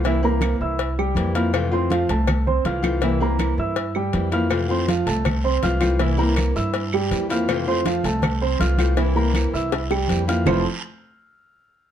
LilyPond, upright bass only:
\new Staff \with { instrumentName = "Upright bass" } { \clef bass \time 4/4 \key f \major \tempo 4 = 161 c,4. c,4. f,4~ | f,4. c,4. c,4~ | c,4. g,4. f,4~ | f,4. c,4. c,4~ |
c,4. g,4. f,4~ | f,4. c,4. c,4~ | c,4. c,4. f,4 | f,,8 r2. r8 | }